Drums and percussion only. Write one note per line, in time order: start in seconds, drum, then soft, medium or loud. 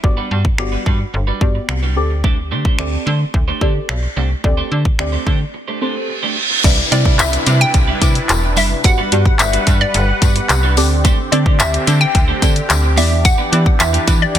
0.04 kick loud
0.45 kick medium
0.58 finger snap loud
0.86 kick medium
1.41 kick medium
1.69 finger snap loud
2.24 kick loud
2.65 kick medium
2.79 finger snap loud
3.34 kick loud
3.61 kick medium
3.89 finger snap loud
4.44 kick loud
4.85 kick medium
4.99 finger snap loud
5.27 kick medium
6.64 kick loud
6.64 closed hi-hat medium
6.64 crash medium
6.64 tambourine medium
6.92 closed hi-hat medium
6.92 tambourine soft
7.05 kick medium
7.19 clap loud
7.19 closed hi-hat loud
7.19 tambourine loud
7.33 closed hi-hat medium
7.47 closed hi-hat medium
7.47 tambourine medium
7.74 kick loud
7.74 closed hi-hat medium
7.74 tambourine soft
8.02 kick medium
8.02 closed hi-hat medium
8.02 tambourine soft
8.15 closed hi-hat medium
8.29 clap loud
8.29 closed hi-hat medium
8.29 tambourine medium
8.56 open hi-hat medium
8.56 tambourine medium
8.84 kick loud
8.84 closed hi-hat medium
8.84 tambourine medium
9.12 closed hi-hat medium
9.26 kick medium
9.39 clap loud
9.39 closed hi-hat loud
9.39 tambourine loud
9.53 closed hi-hat medium
9.67 kick medium
9.67 closed hi-hat medium
9.67 tambourine medium
9.94 closed hi-hat medium
9.94 tambourine soft
10.22 kick medium
10.22 closed hi-hat medium
10.22 tambourine soft
10.36 closed hi-hat medium
10.49 clap loud
10.49 closed hi-hat medium
10.49 tambourine medium
10.77 open hi-hat medium
10.77 tambourine medium
11.05 kick loud
11.05 closed hi-hat medium
11.05 tambourine medium
11.32 closed hi-hat medium
11.46 kick medium
11.60 clap loud
11.60 closed hi-hat loud
11.60 tambourine loud
11.74 closed hi-hat medium
11.87 closed hi-hat medium
11.87 tambourine medium
12.15 kick loud
12.15 closed hi-hat medium
12.15 tambourine soft
12.42 kick medium
12.42 closed hi-hat medium
12.42 tambourine soft
12.56 closed hi-hat medium
12.70 clap loud
12.70 closed hi-hat medium
12.70 tambourine medium
12.97 open hi-hat medium
12.97 tambourine medium
13.25 kick loud
13.25 closed hi-hat medium
13.25 tambourine medium
13.53 closed hi-hat medium
13.66 kick medium
13.80 clap loud
13.80 closed hi-hat loud
13.80 tambourine loud
13.94 closed hi-hat medium
14.07 kick medium
14.07 closed hi-hat medium
14.07 tambourine medium
14.35 closed hi-hat medium
14.35 tambourine soft